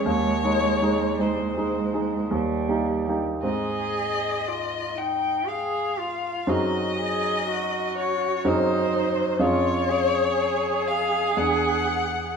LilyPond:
<<
  \new Staff \with { instrumentName = "Violin" } { \time 3/4 \key aes \major \tempo 4 = 60 des''4 c''4 r4 | ees''4. g''8 f''4 | ees''4. des''8 c''4 | des''4. f''8 ges''4 | }
  \new Staff \with { instrumentName = "Cello" } { \time 3/4 \key aes \major aes2 g4 | aes'4 f'8 ees'8 aes'8 f'8 | ges'8 aes'8 ges'4 ees'4 | f'8 aes'2~ aes'8 | }
  \new Staff \with { instrumentName = "Grand piano" } { \time 3/4 \key aes \major \tuplet 3/2 { ees,8 <aes ees' aes'>8 <aes ees' aes'>8 <aes ees' aes'>8 <aes ees' aes'>8 <aes ees' aes'>8 ees,8 <bes ees' g'>8 <bes ees' g'>8 } | <aes, c' ees' aes'>2. | <ges, c' ees' aes'>2 <ges, c' ees' aes'>4 | <f, des' f' aes'>2 <e, d' gis'>4 | }
>>